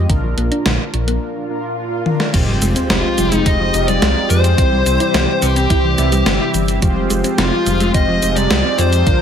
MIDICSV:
0, 0, Header, 1, 10, 480
1, 0, Start_track
1, 0, Tempo, 560748
1, 81, Time_signature, 4, 2, 24, 8
1, 7890, End_track
2, 0, Start_track
2, 0, Title_t, "Lead electric guitar"
2, 0, Program_c, 0, 29
2, 2483, Note_on_c, 0, 65, 94
2, 2869, Note_off_c, 0, 65, 0
2, 2869, Note_on_c, 0, 63, 94
2, 2963, Note_on_c, 0, 75, 111
2, 2977, Note_off_c, 0, 63, 0
2, 3317, Note_off_c, 0, 75, 0
2, 3321, Note_on_c, 0, 74, 102
2, 3679, Note_off_c, 0, 74, 0
2, 3682, Note_on_c, 0, 72, 103
2, 4640, Note_on_c, 0, 67, 88
2, 4671, Note_off_c, 0, 72, 0
2, 5567, Note_off_c, 0, 67, 0
2, 6321, Note_on_c, 0, 65, 97
2, 6768, Note_off_c, 0, 65, 0
2, 6800, Note_on_c, 0, 75, 114
2, 7157, Note_off_c, 0, 75, 0
2, 7160, Note_on_c, 0, 74, 107
2, 7517, Note_on_c, 0, 72, 105
2, 7532, Note_off_c, 0, 74, 0
2, 7890, Note_off_c, 0, 72, 0
2, 7890, End_track
3, 0, Start_track
3, 0, Title_t, "String machine"
3, 0, Program_c, 1, 50
3, 2485, Note_on_c, 1, 65, 99
3, 2870, Note_off_c, 1, 65, 0
3, 2870, Note_on_c, 1, 63, 99
3, 2963, Note_on_c, 1, 75, 124
3, 2978, Note_off_c, 1, 63, 0
3, 3324, Note_on_c, 1, 74, 111
3, 3333, Note_off_c, 1, 75, 0
3, 3683, Note_on_c, 1, 72, 108
3, 3694, Note_off_c, 1, 74, 0
3, 4641, Note_on_c, 1, 67, 94
3, 4671, Note_off_c, 1, 72, 0
3, 5567, Note_off_c, 1, 67, 0
3, 6320, Note_on_c, 1, 65, 96
3, 6767, Note_off_c, 1, 65, 0
3, 6799, Note_on_c, 1, 75, 122
3, 7158, Note_on_c, 1, 74, 117
3, 7171, Note_off_c, 1, 75, 0
3, 7519, Note_on_c, 1, 72, 117
3, 7531, Note_off_c, 1, 74, 0
3, 7890, Note_off_c, 1, 72, 0
3, 7890, End_track
4, 0, Start_track
4, 0, Title_t, "Analog polysynth"
4, 0, Program_c, 2, 90
4, 81, Note_on_c, 2, 46, 73
4, 81, Note_on_c, 2, 62, 69
4, 81, Note_on_c, 2, 65, 67
4, 82, Note_on_c, 2, 70, 79
4, 1253, Note_off_c, 2, 46, 0
4, 1253, Note_off_c, 2, 62, 0
4, 1253, Note_off_c, 2, 65, 0
4, 1253, Note_off_c, 2, 70, 0
4, 1281, Note_on_c, 2, 46, 75
4, 1281, Note_on_c, 2, 62, 70
4, 1281, Note_on_c, 2, 65, 70
4, 1281, Note_on_c, 2, 70, 86
4, 1732, Note_off_c, 2, 46, 0
4, 1733, Note_off_c, 2, 62, 0
4, 1733, Note_off_c, 2, 65, 0
4, 1733, Note_off_c, 2, 70, 0
4, 1761, Note_on_c, 2, 62, 79
4, 1761, Note_on_c, 2, 65, 74
4, 1761, Note_on_c, 2, 70, 93
4, 1972, Note_off_c, 2, 62, 0
4, 1973, Note_off_c, 2, 65, 0
4, 1973, Note_off_c, 2, 70, 0
4, 2000, Note_on_c, 2, 67, 68
4, 2001, Note_on_c, 2, 56, 74
4, 2001, Note_on_c, 2, 60, 66
4, 2001, Note_on_c, 2, 65, 68
4, 2001, Note_on_c, 2, 72, 81
4, 3172, Note_off_c, 2, 56, 0
4, 3172, Note_off_c, 2, 65, 0
4, 3172, Note_off_c, 2, 67, 0
4, 3172, Note_off_c, 2, 72, 0
4, 3173, Note_off_c, 2, 60, 0
4, 3200, Note_on_c, 2, 56, 84
4, 3200, Note_on_c, 2, 60, 74
4, 3200, Note_on_c, 2, 63, 97
4, 3200, Note_on_c, 2, 65, 76
4, 3200, Note_on_c, 2, 67, 75
4, 3892, Note_off_c, 2, 56, 0
4, 3892, Note_off_c, 2, 60, 0
4, 3892, Note_off_c, 2, 63, 0
4, 3892, Note_off_c, 2, 65, 0
4, 3892, Note_off_c, 2, 67, 0
4, 3921, Note_on_c, 2, 48, 75
4, 3921, Note_on_c, 2, 64, 67
4, 3921, Note_on_c, 2, 67, 66
4, 3922, Note_on_c, 2, 72, 82
4, 5093, Note_off_c, 2, 48, 0
4, 5093, Note_off_c, 2, 64, 0
4, 5093, Note_off_c, 2, 67, 0
4, 5093, Note_off_c, 2, 72, 0
4, 5120, Note_on_c, 2, 48, 82
4, 5120, Note_on_c, 2, 64, 74
4, 5120, Note_on_c, 2, 67, 76
4, 5120, Note_on_c, 2, 76, 93
4, 5812, Note_off_c, 2, 48, 0
4, 5812, Note_off_c, 2, 64, 0
4, 5812, Note_off_c, 2, 67, 0
4, 5812, Note_off_c, 2, 76, 0
4, 5841, Note_on_c, 2, 56, 73
4, 5841, Note_on_c, 2, 60, 69
4, 5841, Note_on_c, 2, 65, 70
4, 5841, Note_on_c, 2, 67, 70
4, 5841, Note_on_c, 2, 72, 82
4, 7012, Note_off_c, 2, 60, 0
4, 7012, Note_off_c, 2, 65, 0
4, 7012, Note_off_c, 2, 67, 0
4, 7013, Note_off_c, 2, 56, 0
4, 7013, Note_off_c, 2, 72, 0
4, 7041, Note_on_c, 2, 67, 77
4, 7042, Note_on_c, 2, 56, 84
4, 7042, Note_on_c, 2, 60, 78
4, 7042, Note_on_c, 2, 63, 92
4, 7042, Note_on_c, 2, 65, 75
4, 7733, Note_off_c, 2, 56, 0
4, 7733, Note_off_c, 2, 60, 0
4, 7733, Note_off_c, 2, 63, 0
4, 7733, Note_off_c, 2, 65, 0
4, 7733, Note_off_c, 2, 67, 0
4, 7759, Note_on_c, 2, 62, 68
4, 7760, Note_on_c, 2, 46, 74
4, 7760, Note_on_c, 2, 65, 68
4, 7760, Note_on_c, 2, 70, 79
4, 7890, Note_off_c, 2, 46, 0
4, 7890, Note_off_c, 2, 62, 0
4, 7890, Note_off_c, 2, 65, 0
4, 7890, Note_off_c, 2, 70, 0
4, 7890, End_track
5, 0, Start_track
5, 0, Title_t, "Analog synth pad"
5, 0, Program_c, 3, 89
5, 2002, Note_on_c, 3, 56, 69
5, 2002, Note_on_c, 3, 67, 86
5, 2003, Note_on_c, 3, 53, 75
5, 2003, Note_on_c, 3, 60, 72
5, 3902, Note_off_c, 3, 56, 0
5, 3903, Note_off_c, 3, 53, 0
5, 3921, Note_on_c, 3, 55, 71
5, 3922, Note_on_c, 3, 52, 78
5, 5822, Note_off_c, 3, 55, 0
5, 5823, Note_off_c, 3, 52, 0
5, 5843, Note_on_c, 3, 53, 76
5, 5843, Note_on_c, 3, 56, 73
5, 7727, Note_off_c, 3, 67, 0
5, 7728, Note_off_c, 3, 60, 0
5, 7743, Note_off_c, 3, 56, 0
5, 7760, Note_on_c, 3, 58, 70
5, 7760, Note_on_c, 3, 65, 88
5, 7761, Note_on_c, 3, 50, 75
5, 7890, Note_off_c, 3, 50, 0
5, 7890, Note_off_c, 3, 53, 0
5, 7890, Note_off_c, 3, 58, 0
5, 7890, Note_off_c, 3, 65, 0
5, 7890, End_track
6, 0, Start_track
6, 0, Title_t, "Synth arpeggio sound"
6, 0, Program_c, 4, 84
6, 82, Note_on_c, 4, 50, 94
6, 160, Note_off_c, 4, 50, 0
6, 202, Note_on_c, 4, 53, 76
6, 249, Note_off_c, 4, 53, 0
6, 321, Note_on_c, 4, 58, 106
6, 369, Note_off_c, 4, 58, 0
6, 440, Note_on_c, 4, 62, 100
6, 519, Note_off_c, 4, 62, 0
6, 561, Note_on_c, 4, 50, 84
6, 640, Note_off_c, 4, 50, 0
6, 801, Note_on_c, 4, 53, 79
6, 880, Note_off_c, 4, 53, 0
6, 921, Note_on_c, 4, 58, 100
6, 1035, Note_off_c, 4, 58, 0
6, 2001, Note_on_c, 4, 53, 102
6, 2080, Note_off_c, 4, 53, 0
6, 2121, Note_on_c, 4, 55, 74
6, 2169, Note_off_c, 4, 55, 0
6, 2241, Note_on_c, 4, 56, 107
6, 2288, Note_off_c, 4, 56, 0
6, 2362, Note_on_c, 4, 60, 101
6, 2440, Note_off_c, 4, 60, 0
6, 2481, Note_on_c, 4, 53, 83
6, 2560, Note_off_c, 4, 53, 0
6, 2720, Note_on_c, 4, 55, 78
6, 2799, Note_off_c, 4, 55, 0
6, 2840, Note_on_c, 4, 56, 102
6, 2955, Note_off_c, 4, 56, 0
6, 2961, Note_on_c, 4, 60, 99
6, 3040, Note_off_c, 4, 60, 0
6, 3081, Note_on_c, 4, 53, 109
6, 3160, Note_off_c, 4, 53, 0
6, 3321, Note_on_c, 4, 55, 99
6, 3400, Note_off_c, 4, 55, 0
6, 3441, Note_on_c, 4, 56, 103
6, 3520, Note_off_c, 4, 56, 0
6, 3561, Note_on_c, 4, 60, 80
6, 3675, Note_off_c, 4, 60, 0
6, 3682, Note_on_c, 4, 53, 81
6, 3760, Note_off_c, 4, 53, 0
6, 3920, Note_on_c, 4, 52, 98
6, 3999, Note_off_c, 4, 52, 0
6, 4041, Note_on_c, 4, 55, 77
6, 4089, Note_off_c, 4, 55, 0
6, 4160, Note_on_c, 4, 60, 107
6, 4208, Note_off_c, 4, 60, 0
6, 4280, Note_on_c, 4, 64, 106
6, 4359, Note_off_c, 4, 64, 0
6, 4400, Note_on_c, 4, 52, 87
6, 4479, Note_off_c, 4, 52, 0
6, 4640, Note_on_c, 4, 55, 78
6, 4719, Note_off_c, 4, 55, 0
6, 4759, Note_on_c, 4, 60, 101
6, 4874, Note_off_c, 4, 60, 0
6, 4881, Note_on_c, 4, 64, 102
6, 4960, Note_off_c, 4, 64, 0
6, 5001, Note_on_c, 4, 52, 109
6, 5080, Note_off_c, 4, 52, 0
6, 5240, Note_on_c, 4, 55, 98
6, 5319, Note_off_c, 4, 55, 0
6, 5361, Note_on_c, 4, 60, 104
6, 5440, Note_off_c, 4, 60, 0
6, 5481, Note_on_c, 4, 64, 77
6, 5595, Note_off_c, 4, 64, 0
6, 5600, Note_on_c, 4, 52, 83
6, 5679, Note_off_c, 4, 52, 0
6, 5840, Note_on_c, 4, 53, 102
6, 5919, Note_off_c, 4, 53, 0
6, 5960, Note_on_c, 4, 55, 76
6, 6008, Note_off_c, 4, 55, 0
6, 6079, Note_on_c, 4, 56, 107
6, 6127, Note_off_c, 4, 56, 0
6, 6200, Note_on_c, 4, 60, 105
6, 6279, Note_off_c, 4, 60, 0
6, 6320, Note_on_c, 4, 53, 85
6, 6399, Note_off_c, 4, 53, 0
6, 6561, Note_on_c, 4, 55, 79
6, 6640, Note_off_c, 4, 55, 0
6, 6681, Note_on_c, 4, 56, 98
6, 6795, Note_off_c, 4, 56, 0
6, 6800, Note_on_c, 4, 60, 101
6, 6880, Note_off_c, 4, 60, 0
6, 6920, Note_on_c, 4, 53, 104
6, 7000, Note_off_c, 4, 53, 0
6, 7160, Note_on_c, 4, 55, 101
6, 7239, Note_off_c, 4, 55, 0
6, 7280, Note_on_c, 4, 56, 104
6, 7359, Note_off_c, 4, 56, 0
6, 7400, Note_on_c, 4, 60, 78
6, 7515, Note_off_c, 4, 60, 0
6, 7519, Note_on_c, 4, 53, 78
6, 7599, Note_off_c, 4, 53, 0
6, 7759, Note_on_c, 4, 50, 99
6, 7839, Note_off_c, 4, 50, 0
6, 7890, End_track
7, 0, Start_track
7, 0, Title_t, "Detuned saw bass"
7, 0, Program_c, 5, 39
7, 82, Note_on_c, 5, 34, 97
7, 291, Note_off_c, 5, 34, 0
7, 323, Note_on_c, 5, 34, 83
7, 427, Note_off_c, 5, 34, 0
7, 562, Note_on_c, 5, 34, 78
7, 666, Note_off_c, 5, 34, 0
7, 803, Note_on_c, 5, 34, 82
7, 1011, Note_off_c, 5, 34, 0
7, 2002, Note_on_c, 5, 29, 103
7, 2211, Note_off_c, 5, 29, 0
7, 2242, Note_on_c, 5, 29, 86
7, 2346, Note_off_c, 5, 29, 0
7, 2482, Note_on_c, 5, 29, 81
7, 2586, Note_off_c, 5, 29, 0
7, 2722, Note_on_c, 5, 29, 79
7, 2931, Note_off_c, 5, 29, 0
7, 2962, Note_on_c, 5, 29, 101
7, 3171, Note_off_c, 5, 29, 0
7, 3201, Note_on_c, 5, 29, 87
7, 3411, Note_off_c, 5, 29, 0
7, 3442, Note_on_c, 5, 36, 99
7, 3546, Note_off_c, 5, 36, 0
7, 3681, Note_on_c, 5, 41, 89
7, 3891, Note_off_c, 5, 41, 0
7, 3921, Note_on_c, 5, 36, 97
7, 4130, Note_off_c, 5, 36, 0
7, 4162, Note_on_c, 5, 36, 87
7, 4266, Note_off_c, 5, 36, 0
7, 4401, Note_on_c, 5, 36, 81
7, 4506, Note_off_c, 5, 36, 0
7, 4641, Note_on_c, 5, 36, 81
7, 4851, Note_off_c, 5, 36, 0
7, 4882, Note_on_c, 5, 36, 99
7, 5091, Note_off_c, 5, 36, 0
7, 5120, Note_on_c, 5, 36, 92
7, 5330, Note_off_c, 5, 36, 0
7, 5360, Note_on_c, 5, 31, 100
7, 5465, Note_off_c, 5, 31, 0
7, 5601, Note_on_c, 5, 31, 84
7, 5810, Note_off_c, 5, 31, 0
7, 5842, Note_on_c, 5, 29, 101
7, 6051, Note_off_c, 5, 29, 0
7, 6081, Note_on_c, 5, 29, 87
7, 6186, Note_off_c, 5, 29, 0
7, 6321, Note_on_c, 5, 29, 80
7, 6426, Note_off_c, 5, 29, 0
7, 6561, Note_on_c, 5, 29, 81
7, 6770, Note_off_c, 5, 29, 0
7, 6801, Note_on_c, 5, 29, 100
7, 7010, Note_off_c, 5, 29, 0
7, 7040, Note_on_c, 5, 29, 84
7, 7250, Note_off_c, 5, 29, 0
7, 7279, Note_on_c, 5, 36, 102
7, 7385, Note_off_c, 5, 36, 0
7, 7521, Note_on_c, 5, 41, 89
7, 7730, Note_off_c, 5, 41, 0
7, 7761, Note_on_c, 5, 34, 103
7, 7890, Note_off_c, 5, 34, 0
7, 7890, End_track
8, 0, Start_track
8, 0, Title_t, "Sub drop"
8, 0, Program_c, 6, 103
8, 2002, Note_on_c, 6, 60, 71
8, 3922, Note_off_c, 6, 60, 0
8, 7890, End_track
9, 0, Start_track
9, 0, Title_t, "Swell"
9, 0, Program_c, 7, 103
9, 1042, Note_on_c, 7, 60, 77
9, 2002, Note_off_c, 7, 60, 0
9, 7890, End_track
10, 0, Start_track
10, 0, Title_t, "Drums"
10, 82, Note_on_c, 9, 36, 109
10, 82, Note_on_c, 9, 42, 94
10, 167, Note_off_c, 9, 36, 0
10, 168, Note_off_c, 9, 42, 0
10, 322, Note_on_c, 9, 42, 65
10, 408, Note_off_c, 9, 42, 0
10, 442, Note_on_c, 9, 42, 62
10, 528, Note_off_c, 9, 42, 0
10, 562, Note_on_c, 9, 38, 113
10, 562, Note_on_c, 9, 42, 96
10, 648, Note_off_c, 9, 38, 0
10, 648, Note_off_c, 9, 42, 0
10, 802, Note_on_c, 9, 42, 63
10, 887, Note_off_c, 9, 42, 0
10, 923, Note_on_c, 9, 42, 63
10, 1008, Note_off_c, 9, 42, 0
10, 1763, Note_on_c, 9, 48, 59
10, 1848, Note_off_c, 9, 48, 0
10, 1882, Note_on_c, 9, 38, 69
10, 1968, Note_off_c, 9, 38, 0
10, 2002, Note_on_c, 9, 36, 114
10, 2002, Note_on_c, 9, 42, 99
10, 2002, Note_on_c, 9, 49, 107
10, 2002, Note_on_c, 9, 82, 31
10, 2087, Note_off_c, 9, 36, 0
10, 2087, Note_off_c, 9, 42, 0
10, 2087, Note_off_c, 9, 49, 0
10, 2087, Note_off_c, 9, 82, 0
10, 2242, Note_on_c, 9, 42, 70
10, 2242, Note_on_c, 9, 82, 73
10, 2327, Note_off_c, 9, 42, 0
10, 2327, Note_off_c, 9, 82, 0
10, 2362, Note_on_c, 9, 42, 67
10, 2362, Note_on_c, 9, 82, 40
10, 2448, Note_off_c, 9, 42, 0
10, 2448, Note_off_c, 9, 82, 0
10, 2483, Note_on_c, 9, 38, 121
10, 2483, Note_on_c, 9, 42, 98
10, 2483, Note_on_c, 9, 82, 32
10, 2568, Note_off_c, 9, 38, 0
10, 2568, Note_off_c, 9, 42, 0
10, 2568, Note_off_c, 9, 82, 0
10, 2722, Note_on_c, 9, 42, 70
10, 2722, Note_on_c, 9, 82, 70
10, 2808, Note_off_c, 9, 42, 0
10, 2808, Note_off_c, 9, 82, 0
10, 2842, Note_on_c, 9, 42, 67
10, 2842, Note_on_c, 9, 82, 42
10, 2928, Note_off_c, 9, 42, 0
10, 2928, Note_off_c, 9, 82, 0
10, 2962, Note_on_c, 9, 36, 121
10, 2962, Note_on_c, 9, 42, 95
10, 2962, Note_on_c, 9, 82, 30
10, 3047, Note_off_c, 9, 36, 0
10, 3048, Note_off_c, 9, 42, 0
10, 3048, Note_off_c, 9, 82, 0
10, 3202, Note_on_c, 9, 42, 67
10, 3202, Note_on_c, 9, 82, 68
10, 3287, Note_off_c, 9, 42, 0
10, 3287, Note_off_c, 9, 82, 0
10, 3322, Note_on_c, 9, 42, 66
10, 3322, Note_on_c, 9, 82, 40
10, 3408, Note_off_c, 9, 42, 0
10, 3408, Note_off_c, 9, 82, 0
10, 3443, Note_on_c, 9, 38, 120
10, 3443, Note_on_c, 9, 42, 95
10, 3443, Note_on_c, 9, 82, 30
10, 3528, Note_off_c, 9, 38, 0
10, 3528, Note_off_c, 9, 42, 0
10, 3528, Note_off_c, 9, 82, 0
10, 3683, Note_on_c, 9, 42, 68
10, 3683, Note_on_c, 9, 82, 70
10, 3768, Note_off_c, 9, 42, 0
10, 3768, Note_off_c, 9, 82, 0
10, 3803, Note_on_c, 9, 42, 68
10, 3803, Note_on_c, 9, 82, 42
10, 3888, Note_off_c, 9, 42, 0
10, 3888, Note_off_c, 9, 82, 0
10, 3921, Note_on_c, 9, 36, 126
10, 3923, Note_on_c, 9, 42, 102
10, 3923, Note_on_c, 9, 82, 32
10, 4007, Note_off_c, 9, 36, 0
10, 4008, Note_off_c, 9, 42, 0
10, 4008, Note_off_c, 9, 82, 0
10, 4163, Note_on_c, 9, 42, 68
10, 4163, Note_on_c, 9, 82, 74
10, 4248, Note_off_c, 9, 42, 0
10, 4248, Note_off_c, 9, 82, 0
10, 4283, Note_on_c, 9, 42, 69
10, 4283, Note_on_c, 9, 82, 39
10, 4368, Note_off_c, 9, 42, 0
10, 4368, Note_off_c, 9, 82, 0
10, 4403, Note_on_c, 9, 38, 124
10, 4403, Note_on_c, 9, 42, 99
10, 4403, Note_on_c, 9, 82, 30
10, 4489, Note_off_c, 9, 38, 0
10, 4489, Note_off_c, 9, 42, 0
10, 4489, Note_off_c, 9, 82, 0
10, 4642, Note_on_c, 9, 42, 70
10, 4642, Note_on_c, 9, 82, 69
10, 4728, Note_off_c, 9, 42, 0
10, 4728, Note_off_c, 9, 82, 0
10, 4762, Note_on_c, 9, 42, 67
10, 4762, Note_on_c, 9, 82, 40
10, 4848, Note_off_c, 9, 42, 0
10, 4848, Note_off_c, 9, 82, 0
10, 4881, Note_on_c, 9, 36, 120
10, 4882, Note_on_c, 9, 42, 97
10, 4882, Note_on_c, 9, 82, 30
10, 4967, Note_off_c, 9, 36, 0
10, 4967, Note_off_c, 9, 42, 0
10, 4967, Note_off_c, 9, 82, 0
10, 5121, Note_on_c, 9, 38, 36
10, 5121, Note_on_c, 9, 42, 66
10, 5121, Note_on_c, 9, 82, 67
10, 5207, Note_off_c, 9, 38, 0
10, 5207, Note_off_c, 9, 42, 0
10, 5207, Note_off_c, 9, 82, 0
10, 5241, Note_on_c, 9, 42, 67
10, 5241, Note_on_c, 9, 82, 38
10, 5326, Note_off_c, 9, 42, 0
10, 5326, Note_off_c, 9, 82, 0
10, 5361, Note_on_c, 9, 38, 121
10, 5361, Note_on_c, 9, 42, 98
10, 5361, Note_on_c, 9, 82, 29
10, 5446, Note_off_c, 9, 38, 0
10, 5446, Note_off_c, 9, 42, 0
10, 5446, Note_off_c, 9, 82, 0
10, 5601, Note_on_c, 9, 42, 69
10, 5601, Note_on_c, 9, 82, 71
10, 5686, Note_off_c, 9, 42, 0
10, 5686, Note_off_c, 9, 82, 0
10, 5721, Note_on_c, 9, 42, 71
10, 5721, Note_on_c, 9, 82, 40
10, 5807, Note_off_c, 9, 42, 0
10, 5807, Note_off_c, 9, 82, 0
10, 5841, Note_on_c, 9, 36, 127
10, 5841, Note_on_c, 9, 42, 101
10, 5841, Note_on_c, 9, 82, 30
10, 5926, Note_off_c, 9, 42, 0
10, 5926, Note_off_c, 9, 82, 0
10, 5927, Note_off_c, 9, 36, 0
10, 6081, Note_on_c, 9, 42, 68
10, 6081, Note_on_c, 9, 82, 68
10, 6166, Note_off_c, 9, 42, 0
10, 6166, Note_off_c, 9, 82, 0
10, 6200, Note_on_c, 9, 42, 68
10, 6200, Note_on_c, 9, 82, 39
10, 6286, Note_off_c, 9, 42, 0
10, 6286, Note_off_c, 9, 82, 0
10, 6320, Note_on_c, 9, 38, 125
10, 6320, Note_on_c, 9, 42, 97
10, 6320, Note_on_c, 9, 82, 30
10, 6406, Note_off_c, 9, 38, 0
10, 6406, Note_off_c, 9, 42, 0
10, 6406, Note_off_c, 9, 82, 0
10, 6560, Note_on_c, 9, 42, 67
10, 6560, Note_on_c, 9, 82, 66
10, 6646, Note_off_c, 9, 42, 0
10, 6646, Note_off_c, 9, 82, 0
10, 6681, Note_on_c, 9, 42, 64
10, 6681, Note_on_c, 9, 82, 37
10, 6766, Note_off_c, 9, 42, 0
10, 6766, Note_off_c, 9, 82, 0
10, 6801, Note_on_c, 9, 36, 127
10, 6801, Note_on_c, 9, 42, 93
10, 6801, Note_on_c, 9, 82, 29
10, 6886, Note_off_c, 9, 36, 0
10, 6886, Note_off_c, 9, 42, 0
10, 6886, Note_off_c, 9, 82, 0
10, 7041, Note_on_c, 9, 42, 65
10, 7041, Note_on_c, 9, 82, 63
10, 7126, Note_off_c, 9, 42, 0
10, 7126, Note_off_c, 9, 82, 0
10, 7161, Note_on_c, 9, 42, 66
10, 7161, Note_on_c, 9, 82, 36
10, 7247, Note_off_c, 9, 42, 0
10, 7247, Note_off_c, 9, 82, 0
10, 7281, Note_on_c, 9, 38, 126
10, 7281, Note_on_c, 9, 42, 95
10, 7281, Note_on_c, 9, 82, 29
10, 7366, Note_off_c, 9, 38, 0
10, 7366, Note_off_c, 9, 42, 0
10, 7366, Note_off_c, 9, 82, 0
10, 7521, Note_on_c, 9, 42, 66
10, 7521, Note_on_c, 9, 82, 68
10, 7606, Note_off_c, 9, 42, 0
10, 7606, Note_off_c, 9, 82, 0
10, 7641, Note_on_c, 9, 42, 69
10, 7641, Note_on_c, 9, 82, 37
10, 7726, Note_off_c, 9, 42, 0
10, 7726, Note_off_c, 9, 82, 0
10, 7761, Note_on_c, 9, 36, 122
10, 7761, Note_on_c, 9, 42, 97
10, 7761, Note_on_c, 9, 82, 30
10, 7846, Note_off_c, 9, 36, 0
10, 7847, Note_off_c, 9, 42, 0
10, 7847, Note_off_c, 9, 82, 0
10, 7890, End_track
0, 0, End_of_file